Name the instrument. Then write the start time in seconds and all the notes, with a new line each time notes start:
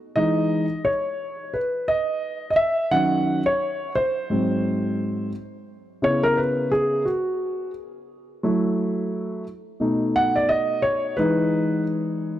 grand piano
0.16 E3 G#3 D#4 D#5
0.85 C#5
1.54 B4
1.88 D#5
2.50 D#5
2.56 E5
2.91 D#3 F#3 C#4 F#5
3.46 C#5
3.95 C5
4.30 G#2 F#3 C4
6.02 C#3 B3 E4 C#5
6.23 A#4
6.37 B4
6.72 G#4
7.05 F#4
8.43 F#3 A3 E4
9.80 B2 A3 D#4
10.16 F#5
10.36 D5
10.49 D#5
10.82 C#5
11.17 E3 G#3 D#4 B4